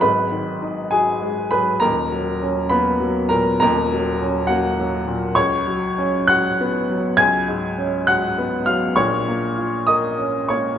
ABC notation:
X:1
M:6/8
L:1/8
Q:3/8=67
K:C#mix
V:1 name="Upright piano"
[Bb]3 [Gg]2 [Bb] | [Aa]3 [B,b]2 [Aa] | [Aa]3 [Ff]2 z | [cc']3 [ff']3 |
[gg']3 [ff']2 [ee'] | [cc']3 [dd']2 [cc'] |]
V:2 name="Upright piano" clef=bass
[G,,,G,,F,] D, D F G, F, | [D,,,D,,] F, C A, F, A,, | [D,,,D,,] F, C A, F, A,, | C,, F, C F B, F, |
C,, G,, C F B, F, | [A,,,A,,] A, E A C A, |]